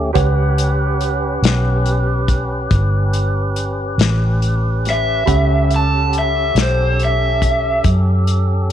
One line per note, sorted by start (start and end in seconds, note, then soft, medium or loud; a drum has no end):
0.00 0.11 D2 medium
0.00 0.11 A3 medium
0.00 0.11 C#4 medium
0.00 0.12 C#4 soft
0.00 0.11 G4 medium
0.00 0.12 F#5 medium
0.13 1.39 C#2 medium
0.13 5.24 C#4 medium
0.13 5.22 G4 medium
0.13 5.24 G4 medium
0.13 5.23 B4 medium
0.13 5.24 B4 medium
0.13 5.23 C#5 medium
0.13 5.24 F#5 medium
0.13 kick medium
0.13 closed hi-hat medium
0.58 closed hi-hat medium
1.01 closed hi-hat medium
1.42 2.67 B1 medium
1.42 snare medium
1.42 closed hi-hat medium
1.86 closed hi-hat medium
2.28 kick medium
2.28 closed hi-hat medium
2.71 3.95 G1 medium
2.71 kick medium
2.71 closed hi-hat medium
3.13 closed hi-hat medium
3.56 closed hi-hat medium
3.98 5.23 A1 medium
3.98 snare medium
3.98 closed hi-hat medium
4.42 closed hi-hat medium
4.85 snare soft
4.85 closed hi-hat soft
4.90 5.71 E5 medium
5.25 6.52 C#2 medium
5.25 8.72 C#4 medium
5.25 8.72 C#4 soft
5.25 8.72 G4 soft
5.25 8.72 G4 medium
5.25 8.72 A4 medium
5.25 8.72 F#5 medium
5.25 8.72 B5 soft
5.25 kick medium
5.25 closed hi-hat medium
5.71 closed hi-hat medium
5.76 6.15 A5 medium
6.13 closed hi-hat medium
6.19 6.57 E5 medium
6.55 7.80 B1 medium
6.55 snare medium
6.55 closed hi-hat medium
6.62 7.01 C5 medium
7.00 closed hi-hat soft
7.05 7.85 E5 medium
7.42 kick medium
7.42 closed hi-hat medium
7.84 8.72 F#2 medium
7.84 kick medium
7.84 closed hi-hat medium
8.27 closed hi-hat medium